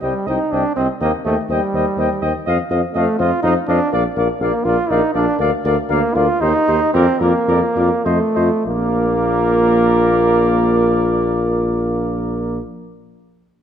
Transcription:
0.01 0.14 C2 medium
0.01 0.29 G3 medium
0.01 0.14 C5 soft
0.01 0.13 D#5 soft
0.01 0.14 G5 medium
0.26 0.38 C2 medium
0.26 0.53 D#4 medium
0.26 0.39 C5 medium
0.26 0.37 D#5 soft
0.26 0.40 G5 soft
0.52 0.63 C2 medium
0.52 0.76 D4 medium
0.52 0.64 C5 medium
0.52 0.63 D#5 medium
0.52 0.64 G5 medium
0.76 0.88 C2 medium
0.76 0.87 C4 medium
0.76 0.88 C5 medium
0.76 0.88 D#5 medium
0.76 0.88 G5 soft
1.00 1.12 D#2 medium
1.00 1.12 A#3 medium
1.00 1.12 C5 medium
1.00 1.12 D#5 medium
1.00 1.13 G5 medium
1.25 1.36 D#2 medium
1.25 1.36 A3 medium
1.25 1.37 C5 medium
1.25 1.36 D#5 medium
1.25 1.38 G5 soft
1.49 1.60 D#2 medium
1.49 2.22 G3 medium
1.49 1.61 C5 medium
1.49 1.61 D#5 medium
1.49 1.62 G5 medium
1.73 1.85 D#2 medium
1.73 1.85 C5 medium
1.73 1.85 D#5 medium
1.73 1.87 G5 medium
1.97 2.08 D#2 medium
1.97 2.09 C5 medium
1.97 2.09 D#5 medium
1.97 2.10 G5 medium
2.22 2.33 D#2 medium
2.22 2.34 C5 medium
2.22 2.33 D#5 medium
2.22 2.34 G5 medium
2.46 2.57 F2 medium
2.46 2.58 C5 medium
2.46 2.57 D#5 medium
2.46 2.58 F5 medium
2.70 2.82 F2 medium
2.70 2.82 C5 medium
2.70 2.81 D#5 medium
2.70 2.82 F5 medium
2.94 3.06 F2 medium
2.94 3.18 A3 medium
2.94 3.07 C5 medium
2.94 3.06 D#5 medium
2.94 3.08 F5 medium
3.19 3.31 F2 medium
3.19 3.42 F4 medium
3.19 3.31 C5 medium
3.19 3.31 D#5 medium
3.19 3.31 F5 medium
3.43 3.55 F2 medium
3.43 3.54 D#4 loud
3.43 3.56 C5 medium
3.43 3.54 D#5 medium
3.43 3.55 F5 medium
3.68 3.79 F2 medium
3.68 3.92 D4 medium
3.68 3.80 C5 medium
3.68 3.79 D#5 medium
3.68 3.80 F5 medium
3.92 4.04 A#1 medium
3.92 4.03 A#4 medium
3.92 4.04 D5 medium
3.92 4.04 F5 medium
4.16 4.27 A#1 medium
4.16 4.28 A#4 medium
4.16 4.28 D5 medium
4.16 4.28 F5 medium
4.40 4.52 A#1 medium
4.40 4.66 A#3 medium
4.40 4.53 A#4 medium
4.40 4.53 D5 medium
4.40 4.53 F5 medium
4.64 4.76 A#1 medium
4.64 4.91 F4 medium
4.64 4.76 A#4 medium
4.64 4.78 D5 medium
4.64 4.77 F5 medium
4.90 5.01 A#1 medium
4.90 5.14 D#4 loud
4.90 5.02 A#4 medium
4.90 5.02 D5 medium
4.90 5.02 F5 medium
5.14 5.26 A#1 medium
5.14 5.39 D4 medium
5.14 5.26 A#4 medium
5.14 5.26 D5 medium
5.14 5.27 F5 medium
5.39 5.50 D2 medium
5.39 5.51 A#4 medium
5.39 5.51 D5 medium
5.39 5.52 F5 medium
5.65 5.76 D2 medium
5.65 5.76 A#4 medium
5.65 5.76 D5 medium
5.65 5.78 F5 medium
5.89 6.01 D2 medium
5.89 6.17 A#3 medium
5.89 6.01 A#4 medium
5.89 6.01 D5 medium
5.89 6.02 F5 medium
6.15 6.27 D2 medium
6.15 6.42 F4 loud
6.15 6.27 A#4 medium
6.15 6.27 D5 medium
6.15 6.28 F5 medium
6.41 6.53 D#2 medium
6.41 6.93 D#4 loud
6.41 6.54 G4 medium
6.41 6.53 C5 medium
6.41 6.53 D#5 medium
6.68 6.80 D#2 medium
6.68 6.80 G4 medium
6.68 6.80 C5 medium
6.68 6.80 D#5 medium
6.94 7.06 F2 medium
6.94 7.22 C4 loud
6.94 7.06 F4 medium
6.94 7.06 A#4 medium
6.94 7.07 D5 medium
7.20 7.33 F2 medium
7.20 8.06 A#3 medium
7.20 7.33 F4 medium
7.20 7.33 A#4 medium
7.20 7.34 D5 medium
7.48 7.61 F2 medium
7.48 7.61 F4 medium
7.48 7.60 A#4 medium
7.48 7.61 D5 medium
7.76 7.90 F2 medium
7.76 7.90 F4 medium
7.76 7.89 A#4 medium
7.76 7.90 D5 medium
8.05 8.19 F2 medium
8.05 8.66 A3 medium
8.05 8.20 F4 medium
8.05 8.19 C5 medium
8.05 8.19 D#5 medium
8.35 8.50 F2 medium
8.35 8.50 F4 medium
8.35 8.49 C5 medium
8.35 8.49 D#5 medium
8.66 12.59 A#1 medium
8.66 12.59 A#3 medium
8.66 12.60 F4 medium
8.66 12.59 A#4 medium
8.66 12.59 D5 medium

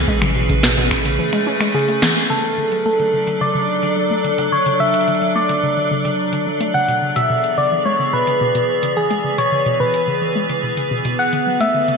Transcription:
0.00 2.26 C#4 medium
0.00 2.26 G#4 loud
0.00 2.26 B4 medium
0.08 1.19 A1 medium
0.08 0.15 G#3 loud
0.08 2.28 A3 medium
0.08 kick loud
0.22 0.33 C#3 medium
0.22 finger snap medium
0.22 closed hi-hat medium
0.22 high tom medium
0.36 0.47 B2 medium
0.49 0.63 C#3 medium
0.49 kick loud
0.49 closed hi-hat medium
0.63 0.75 B2 loud
0.63 finger snap medium
0.63 snare loud
0.77 0.89 B2 loud
0.77 closed hi-hat soft
0.91 finger snap medium
0.91 kick medium
1.05 1.17 C#3 medium
1.05 closed hi-hat medium
1.19 1.32 E3 medium
1.33 1.40 G#3 loud
1.33 finger snap medium
1.47 1.58 C#4 loud
1.60 1.72 G#3 loud
1.60 finger snap medium
1.60 closed hi-hat medium
1.70 closed hi-hat soft
1.74 1.82 C#3 medium
1.74 2.32 G#4 medium
1.79 closed hi-hat soft
1.88 2.02 A3 medium
1.88 closed hi-hat medium
2.02 2.14 E3 medium
2.02 finger snap medium
2.02 snare loud
2.16 closed hi-hat medium
2.30 2.42 C#3 medium
2.30 6.71 F#3 medium
2.30 6.71 D4 medium
2.30 2.85 A4 loud
2.30 6.71 A4 medium
2.30 8.93 D5 medium
2.44 closed hi-hat medium
2.58 2.70 D3 medium
2.72 2.85 F#3 medium
2.72 closed hi-hat medium
2.86 2.93 A3 loud
2.86 3.43 A4 medium
2.99 3.11 D3 medium
2.99 closed hi-hat soft
3.13 3.25 C#3 medium
3.27 3.40 D3 medium
3.27 closed hi-hat medium
3.41 3.53 C#3 loud
3.41 4.54 D5 loud
3.55 3.67 C#3 loud
3.83 3.95 D3 medium
3.83 closed hi-hat medium
3.97 4.10 F#3 medium
4.10 4.18 A3 loud
4.24 4.36 D3 medium
4.24 closed hi-hat medium
4.38 4.50 C#3 medium
4.38 closed hi-hat medium
4.52 4.65 D3 medium
4.52 4.82 C#5 loud
4.66 4.78 C#3 loud
4.66 closed hi-hat medium
4.80 4.92 C#3 medium
4.80 5.37 E5 loud
4.94 closed hi-hat medium
5.01 closed hi-hat soft
5.08 5.20 D3 medium
5.08 closed hi-hat soft
5.15 closed hi-hat soft
5.22 5.35 F#3 medium
5.22 closed hi-hat soft
5.36 5.43 A3 loud
5.36 6.47 D5 loud
5.49 5.61 D3 medium
5.49 closed hi-hat medium
5.63 5.75 C#3 medium
5.77 5.90 D3 medium
5.91 6.03 C#3 loud
6.05 6.17 C#3 medium
6.05 closed hi-hat medium
6.33 6.45 D3 medium
6.33 closed hi-hat medium
6.47 6.60 F#3 medium
6.60 6.68 A3 loud
6.60 closed hi-hat medium
6.74 6.86 C#3 medium
6.74 11.15 E3 medium
6.74 11.15 B3 medium
6.74 11.15 G#4 medium
6.74 7.18 F#5 loud
6.88 7.00 B2 medium
6.88 closed hi-hat medium
7.02 7.15 C#3 medium
7.16 7.28 B2 medium
7.16 7.59 E5 loud
7.16 closed hi-hat medium
7.30 7.42 B2 loud
7.44 closed hi-hat soft
7.58 7.70 C#3 medium
7.58 7.85 D5 loud
7.72 7.85 E3 medium
7.86 7.93 G#3 medium
7.86 8.15 C#5 loud
7.99 8.11 C#3 medium
8.13 8.25 B2 medium
8.13 8.98 B4 loud
8.27 8.40 C#3 medium
8.27 closed hi-hat medium
8.41 8.53 B2 loud
8.55 8.67 B2 loud
8.55 closed hi-hat soft
8.83 8.95 C#3 medium
8.83 closed hi-hat medium
8.97 9.10 E3 medium
8.97 9.40 G#4 loud
8.97 11.17 B4 medium
9.11 9.18 G#3 loud
9.11 closed hi-hat soft
9.24 9.36 C#3 medium
9.38 9.50 B2 medium
9.38 9.80 C#5 medium
9.38 closed hi-hat medium
9.52 9.65 C#3 medium
9.66 9.78 B2 loud
9.66 closed hi-hat soft
9.80 9.92 B2 medium
9.80 10.87 B4 medium
9.94 closed hi-hat medium
10.08 10.20 C#3 medium
10.22 10.35 E3 medium
10.35 10.43 G#3 medium
10.49 10.61 C#3 medium
10.49 closed hi-hat medium
10.63 10.75 B2 medium
10.77 10.90 C#3 medium
10.77 closed hi-hat soft
10.91 11.03 B2 loud
11.05 11.17 B2 loud
11.05 closed hi-hat medium
11.19 11.97 D3 medium
11.19 11.97 A3 medium
11.19 11.97 F#4 medium
11.19 11.97 A4 medium
11.19 11.62 F#5 loud
11.33 11.45 D3 medium
11.33 closed hi-hat soft
11.47 11.60 F#3 medium
11.60 11.68 A3 loud
11.60 11.97 E5 loud
11.60 closed hi-hat medium
11.74 11.86 D3 medium
11.88 11.97 C#3 medium
11.88 closed hi-hat soft

